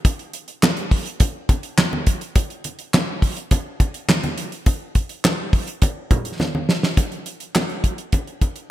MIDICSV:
0, 0, Header, 1, 2, 480
1, 0, Start_track
1, 0, Tempo, 576923
1, 41, Time_signature, 4, 2, 24, 8
1, 7244, End_track
2, 0, Start_track
2, 0, Title_t, "Drums"
2, 40, Note_on_c, 9, 36, 109
2, 40, Note_on_c, 9, 62, 55
2, 41, Note_on_c, 9, 42, 89
2, 123, Note_off_c, 9, 36, 0
2, 123, Note_off_c, 9, 62, 0
2, 124, Note_off_c, 9, 42, 0
2, 160, Note_on_c, 9, 42, 38
2, 244, Note_off_c, 9, 42, 0
2, 278, Note_on_c, 9, 42, 68
2, 362, Note_off_c, 9, 42, 0
2, 398, Note_on_c, 9, 42, 53
2, 481, Note_off_c, 9, 42, 0
2, 524, Note_on_c, 9, 38, 115
2, 524, Note_on_c, 9, 39, 96
2, 527, Note_on_c, 9, 63, 84
2, 607, Note_off_c, 9, 39, 0
2, 608, Note_off_c, 9, 38, 0
2, 611, Note_off_c, 9, 63, 0
2, 639, Note_on_c, 9, 42, 38
2, 722, Note_off_c, 9, 42, 0
2, 760, Note_on_c, 9, 36, 96
2, 761, Note_on_c, 9, 46, 95
2, 843, Note_off_c, 9, 36, 0
2, 844, Note_off_c, 9, 46, 0
2, 879, Note_on_c, 9, 42, 56
2, 962, Note_off_c, 9, 42, 0
2, 997, Note_on_c, 9, 42, 99
2, 1001, Note_on_c, 9, 36, 114
2, 1012, Note_on_c, 9, 62, 55
2, 1081, Note_off_c, 9, 42, 0
2, 1085, Note_off_c, 9, 36, 0
2, 1095, Note_off_c, 9, 62, 0
2, 1240, Note_on_c, 9, 42, 74
2, 1241, Note_on_c, 9, 36, 104
2, 1244, Note_on_c, 9, 62, 53
2, 1323, Note_off_c, 9, 42, 0
2, 1324, Note_off_c, 9, 36, 0
2, 1327, Note_off_c, 9, 62, 0
2, 1358, Note_on_c, 9, 42, 56
2, 1441, Note_off_c, 9, 42, 0
2, 1479, Note_on_c, 9, 63, 76
2, 1483, Note_on_c, 9, 39, 81
2, 1484, Note_on_c, 9, 38, 103
2, 1563, Note_off_c, 9, 63, 0
2, 1566, Note_off_c, 9, 39, 0
2, 1567, Note_off_c, 9, 38, 0
2, 1605, Note_on_c, 9, 63, 76
2, 1688, Note_off_c, 9, 63, 0
2, 1719, Note_on_c, 9, 42, 86
2, 1721, Note_on_c, 9, 36, 95
2, 1802, Note_off_c, 9, 42, 0
2, 1805, Note_off_c, 9, 36, 0
2, 1841, Note_on_c, 9, 42, 46
2, 1924, Note_off_c, 9, 42, 0
2, 1959, Note_on_c, 9, 62, 53
2, 1961, Note_on_c, 9, 36, 111
2, 1962, Note_on_c, 9, 42, 88
2, 2043, Note_off_c, 9, 62, 0
2, 2044, Note_off_c, 9, 36, 0
2, 2045, Note_off_c, 9, 42, 0
2, 2082, Note_on_c, 9, 42, 37
2, 2165, Note_off_c, 9, 42, 0
2, 2199, Note_on_c, 9, 42, 68
2, 2204, Note_on_c, 9, 62, 31
2, 2282, Note_off_c, 9, 42, 0
2, 2288, Note_off_c, 9, 62, 0
2, 2319, Note_on_c, 9, 42, 50
2, 2402, Note_off_c, 9, 42, 0
2, 2446, Note_on_c, 9, 39, 95
2, 2447, Note_on_c, 9, 38, 126
2, 2448, Note_on_c, 9, 63, 81
2, 2529, Note_off_c, 9, 39, 0
2, 2530, Note_off_c, 9, 38, 0
2, 2531, Note_off_c, 9, 63, 0
2, 2681, Note_on_c, 9, 36, 93
2, 2683, Note_on_c, 9, 46, 95
2, 2764, Note_off_c, 9, 36, 0
2, 2766, Note_off_c, 9, 46, 0
2, 2801, Note_on_c, 9, 42, 57
2, 2884, Note_off_c, 9, 42, 0
2, 2920, Note_on_c, 9, 42, 102
2, 2923, Note_on_c, 9, 36, 105
2, 2930, Note_on_c, 9, 62, 58
2, 3003, Note_off_c, 9, 42, 0
2, 3006, Note_off_c, 9, 36, 0
2, 3013, Note_off_c, 9, 62, 0
2, 3161, Note_on_c, 9, 36, 98
2, 3161, Note_on_c, 9, 42, 69
2, 3164, Note_on_c, 9, 62, 53
2, 3245, Note_off_c, 9, 36, 0
2, 3245, Note_off_c, 9, 42, 0
2, 3247, Note_off_c, 9, 62, 0
2, 3280, Note_on_c, 9, 42, 50
2, 3363, Note_off_c, 9, 42, 0
2, 3398, Note_on_c, 9, 63, 79
2, 3405, Note_on_c, 9, 39, 81
2, 3406, Note_on_c, 9, 38, 101
2, 3482, Note_off_c, 9, 63, 0
2, 3488, Note_off_c, 9, 39, 0
2, 3489, Note_off_c, 9, 38, 0
2, 3524, Note_on_c, 9, 42, 39
2, 3526, Note_on_c, 9, 63, 80
2, 3607, Note_off_c, 9, 42, 0
2, 3609, Note_off_c, 9, 63, 0
2, 3641, Note_on_c, 9, 42, 86
2, 3724, Note_off_c, 9, 42, 0
2, 3762, Note_on_c, 9, 42, 43
2, 3845, Note_off_c, 9, 42, 0
2, 3879, Note_on_c, 9, 62, 57
2, 3881, Note_on_c, 9, 36, 109
2, 3881, Note_on_c, 9, 42, 87
2, 3962, Note_off_c, 9, 62, 0
2, 3964, Note_off_c, 9, 36, 0
2, 3964, Note_off_c, 9, 42, 0
2, 4119, Note_on_c, 9, 42, 66
2, 4121, Note_on_c, 9, 36, 86
2, 4125, Note_on_c, 9, 62, 33
2, 4202, Note_off_c, 9, 42, 0
2, 4204, Note_off_c, 9, 36, 0
2, 4208, Note_off_c, 9, 62, 0
2, 4238, Note_on_c, 9, 42, 49
2, 4321, Note_off_c, 9, 42, 0
2, 4365, Note_on_c, 9, 39, 104
2, 4366, Note_on_c, 9, 38, 126
2, 4368, Note_on_c, 9, 63, 87
2, 4448, Note_off_c, 9, 39, 0
2, 4449, Note_off_c, 9, 38, 0
2, 4452, Note_off_c, 9, 63, 0
2, 4601, Note_on_c, 9, 36, 99
2, 4602, Note_on_c, 9, 46, 89
2, 4684, Note_off_c, 9, 36, 0
2, 4685, Note_off_c, 9, 46, 0
2, 4721, Note_on_c, 9, 42, 53
2, 4804, Note_off_c, 9, 42, 0
2, 4840, Note_on_c, 9, 42, 100
2, 4843, Note_on_c, 9, 36, 110
2, 4853, Note_on_c, 9, 62, 58
2, 4923, Note_off_c, 9, 42, 0
2, 4926, Note_off_c, 9, 36, 0
2, 4936, Note_off_c, 9, 62, 0
2, 5081, Note_on_c, 9, 36, 98
2, 5081, Note_on_c, 9, 42, 70
2, 5085, Note_on_c, 9, 62, 55
2, 5085, Note_on_c, 9, 64, 71
2, 5165, Note_off_c, 9, 36, 0
2, 5165, Note_off_c, 9, 42, 0
2, 5168, Note_off_c, 9, 62, 0
2, 5168, Note_off_c, 9, 64, 0
2, 5200, Note_on_c, 9, 42, 51
2, 5283, Note_off_c, 9, 42, 0
2, 5323, Note_on_c, 9, 63, 80
2, 5325, Note_on_c, 9, 38, 61
2, 5406, Note_off_c, 9, 63, 0
2, 5408, Note_off_c, 9, 38, 0
2, 5448, Note_on_c, 9, 63, 78
2, 5531, Note_off_c, 9, 63, 0
2, 5564, Note_on_c, 9, 38, 99
2, 5648, Note_off_c, 9, 38, 0
2, 5685, Note_on_c, 9, 38, 94
2, 5769, Note_off_c, 9, 38, 0
2, 5801, Note_on_c, 9, 36, 100
2, 5802, Note_on_c, 9, 42, 80
2, 5802, Note_on_c, 9, 62, 51
2, 5885, Note_off_c, 9, 36, 0
2, 5885, Note_off_c, 9, 42, 0
2, 5885, Note_off_c, 9, 62, 0
2, 5922, Note_on_c, 9, 42, 35
2, 6005, Note_off_c, 9, 42, 0
2, 6040, Note_on_c, 9, 42, 60
2, 6123, Note_off_c, 9, 42, 0
2, 6159, Note_on_c, 9, 42, 49
2, 6242, Note_off_c, 9, 42, 0
2, 6285, Note_on_c, 9, 39, 92
2, 6286, Note_on_c, 9, 38, 111
2, 6289, Note_on_c, 9, 63, 81
2, 6368, Note_off_c, 9, 39, 0
2, 6369, Note_off_c, 9, 38, 0
2, 6372, Note_off_c, 9, 63, 0
2, 6401, Note_on_c, 9, 42, 32
2, 6485, Note_off_c, 9, 42, 0
2, 6521, Note_on_c, 9, 36, 83
2, 6523, Note_on_c, 9, 42, 82
2, 6605, Note_off_c, 9, 36, 0
2, 6606, Note_off_c, 9, 42, 0
2, 6641, Note_on_c, 9, 42, 49
2, 6724, Note_off_c, 9, 42, 0
2, 6760, Note_on_c, 9, 42, 94
2, 6763, Note_on_c, 9, 36, 101
2, 6773, Note_on_c, 9, 62, 52
2, 6843, Note_off_c, 9, 42, 0
2, 6846, Note_off_c, 9, 36, 0
2, 6856, Note_off_c, 9, 62, 0
2, 6884, Note_on_c, 9, 42, 31
2, 6967, Note_off_c, 9, 42, 0
2, 7001, Note_on_c, 9, 36, 87
2, 7001, Note_on_c, 9, 42, 66
2, 7006, Note_on_c, 9, 62, 46
2, 7084, Note_off_c, 9, 36, 0
2, 7084, Note_off_c, 9, 42, 0
2, 7090, Note_off_c, 9, 62, 0
2, 7119, Note_on_c, 9, 42, 47
2, 7202, Note_off_c, 9, 42, 0
2, 7244, End_track
0, 0, End_of_file